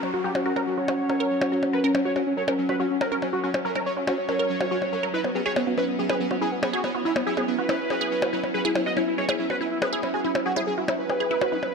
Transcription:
Already playing: F#3 C#4 F#4 C#5 F#5, downlifter
0.03 F#4, percussion blips
0.14 F#4
0.24 F#4 G4
0.35 F#4, percussion blips
0.46 F#4 A#4
0.56 F#4 A#4, percussion blips
0.67 F#4
0.78 F#4 C#5
0.88 F#4, percussion blips
1.09 A#4, percussion blips
1.20 A#4
1.41 F#4, percussion blips
1.52 F#4
1.63 percussion blips
1.73 A#4 B4
1.84 C#4 A#4
1.95 C#4, percussion blips
2.05 F#4 C#5
2.16 C#4 F#4, percussion blips
2.27 C#4
2.37 A#4 C#5
2.48 C#4 A#4, percussion blips
2.58 C#4
2.69 F#4 B4, percussion blips
2.80 C#4 F#4 E5
2.90 C#4
3.01 A#4, percussion blips
3.12 C#4 A#4
3.22 C#4, percussion blips
3.33 F#4
3.44 C#4 F#4
3.54 C#4, percussion blips
3.65 A#4
3.75 C#4 A#4, percussion blips
3.86 C#5
3.97 C#4 F#4
4.07 C#4 F#4, percussion blips
4.18 C#5
4.29 A#4, percussion blips
4.39 A#4
4.61 F#4, percussion blips
4.71 F#4
4.82 percussion blips
4.93 A#4
5.03 A#4
5.14 B3 E4 B4
5.24 B3 E4, percussion blips
5.35 B3 G#4
5.46 G#4 C#5
5.56 B3, percussion blips
5.67 B3 F#4
5.78 E4 B4, percussion blips
5.88 B3
5.99 B3 G#4
6.09 G#4 B4, percussion blips
6.20 B3
6.31 B3 F#4, percussion blips
6.41 E4 G#4
6.52 B3
6.63 B3 G#4, percussion blips
6.73 F#4 G#4
6.84 B3, percussion blips
6.95 B3 F#4
7.05 E4
7.16 B3, percussion blips
7.27 E4 G#4
7.37 B3 G#4, percussion blips
7.48 B3
7.58 F#4 B4
7.69 E4, percussion blips
7.90 G#4, percussion blips
8.01 G#4
8.22 F#4, percussion blips
8.33 E4
8.44 percussion blips
8.54 G#4 B4
8.65 E4 G#4
8.75 E4, percussion blips
8.86 F#4 D#5
8.97 E4, percussion blips
9.07 E4
9.18 G#4 C#5
9.29 E4 G#4, percussion blips
9.39 E4
9.50 F#4 B4, percussion blips
9.61 E4
9.71 E4
9.82 G#4 B4, percussion blips
9.93 E4 G#4
10.03 E4, percussion blips
10.14 F#4 G#4
10.24 E4
10.35 E4, percussion blips
10.46 F#4 G#4
10.56 E4 G#4, percussion blips
10.67 G#4
10.78 E4 F#4
10.88 E4, percussion blips
10.99 B4
11.10 G#4, percussion blips
11.20 G#4
11.31 E4
11.41 F#4, percussion blips
11.52 E4
11.63 percussion blips

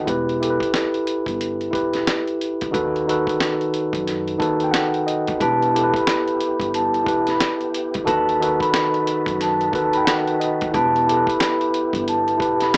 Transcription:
0.05 E1 E4 G4 B4, kick, closed hi-hat
0.29 closed hi-hat
0.40 E4 G4 A4, closed hi-hat
0.50 B4
0.60 kick, closed hi-hat
0.74 snare, closed hi-hat
0.94 closed hi-hat
1.07 closed hi-hat
1.26 G1, kick, closed hi-hat
1.41 closed hi-hat
1.61 closed hi-hat
1.71 E1 E4 G4 B4, kick
1.75 closed hi-hat
1.93 snare, closed hi-hat
2.07 snare, closed hi-hat
2.27 closed hi-hat
2.41 closed hi-hat
2.61 D2, kick, closed hi-hat
2.70 D#3 D#4 F#4 A4 B4, kick
2.74 D#2, closed hi-hat
2.96 closed hi-hat
3.06 D#3 D#4 F#4 A4 B4, closed hi-hat
3.27 kick, closed hi-hat
3.40 snare, closed hi-hat
3.61 closed hi-hat
3.74 closed hi-hat
3.93 F#2, kick, closed hi-hat
4.07 snare, closed hi-hat
4.28 closed hi-hat
4.38 D#2 D#3 D#4 F#4 A4 B4 A5, kick
4.42 closed hi-hat
4.60 G5, closed hi-hat
4.71 F#5, snare, closed hi-hat
4.94 closed hi-hat
5.07 D#5, closed hi-hat
5.28 D#2, kick, closed hi-hat
5.39 E1 B3 E4 G4 B4 A5, kick, closed hi-hat
5.63 closed hi-hat
5.74 E4 G4 A4, closed hi-hat
5.84 B4
5.94 B5, kick, closed hi-hat
6.07 finger snap, snare, closed hi-hat
6.28 closed hi-hat
6.41 closed hi-hat
6.60 G1, kick, closed hi-hat
6.74 A5, closed hi-hat
6.94 closed hi-hat
7.04 E1 E4 G4 B4, kick
7.08 closed hi-hat
7.27 B5, snare, closed hi-hat
7.40 finger snap, snare, closed hi-hat
7.61 closed hi-hat
7.74 closed hi-hat
7.94 D2, kick, closed hi-hat
8.03 D#3 D#4 F#4 A4 B4 A5, kick
8.07 D#2 D#3 D#4 F#4 A4 B4, closed hi-hat
8.29 closed hi-hat
8.40 D#3 D#4 F#4 A4 B4, closed hi-hat
8.60 B5, kick, closed hi-hat
8.74 finger snap, snare, closed hi-hat
8.94 closed hi-hat
9.07 closed hi-hat
9.26 F#2, kick, closed hi-hat
9.41 A5, snare, closed hi-hat
9.61 closed hi-hat
9.71 D#2 D#3 D#4 F#4 A4 B4 A5, kick
9.75 closed hi-hat
9.93 G5 B5, closed hi-hat
10.05 F#5, finger snap, snare, closed hi-hat
10.27 closed hi-hat
10.40 D#5, closed hi-hat
10.61 D#2, kick, closed hi-hat
10.72 E1 B3 E4 G4 B4 A5, kick, closed hi-hat
10.96 closed hi-hat
11.07 E4 G4 A4, closed hi-hat
11.17 B4
11.27 B5, kick, closed hi-hat
11.40 finger snap, snare, closed hi-hat
11.61 closed hi-hat
11.74 closed hi-hat
11.93 G1, kick, closed hi-hat
12.08 A5, closed hi-hat
12.28 closed hi-hat
12.37 E1 E4 G4 B4, kick
12.42 closed hi-hat
12.60 B5, snare, closed hi-hat
12.74 snare

